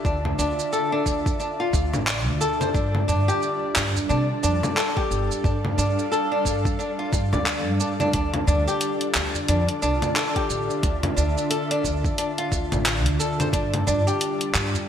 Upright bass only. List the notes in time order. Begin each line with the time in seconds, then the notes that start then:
0.05 D2
0.39 D2
1.06 D2
1.73 D2
1.94 A1
2.27 D2
2.75 G2
3.09 G2
3.76 G2
4.10 C3
4.44 F2
5.11 G1
5.44 G2
5.78 G2
6.45 G2
7.13 G2
7.33 D2
7.67 G2
8.14 D2
8.47 D2
9.15 D2
9.49 F2
9.82 C2
10.50 A1
10.83 D2
11.18 D2
11.85 D2
12.52 D2
12.72 A1
13.06 D2
13.53 G2
13.87 G2
14.55 G2